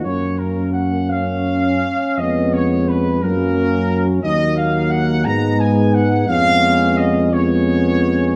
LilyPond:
<<
  \new Staff \with { instrumentName = "Trumpet section" } { \time 6/8 \key ges \major \tempo 4. = 57 des''8 bes'8 ges''8 f''4. | ees''8 des''8 ces''8 bes'4. | \key cis \mixolydian dis''8 eis''8 fis''8 ais''8 gis''8 fis''8 | eis''4 dis''8 cis''4. | }
  \new Staff \with { instrumentName = "French horn section" } { \time 6/8 \key ges \major des'2.~ | des'4. des'4. | \key cis \mixolydian dis'4. dis'4. | cis'4. cis'4. | }
  \new Staff \with { instrumentName = "Trombone section" } { \time 6/8 \key ges \major bes4. des'4. | ces'4. bes4. | \key cis \mixolydian ais4. b4. | b4. b4. | }
  \new Staff \with { instrumentName = "Euphonium" } { \clef bass \time 6/8 \key ges \major bes2~ bes8 r8 | aes4. ges4. | \key cis \mixolydian fis4. gis4. | gis4. gis4. | }
  \new Staff \with { instrumentName = "Tuba" } { \clef bass \time 6/8 \key ges \major ges,2~ ges,8 r8 | f,4. ges,4. | \key cis \mixolydian dis,4. gis,4. | eis,2. | }
>>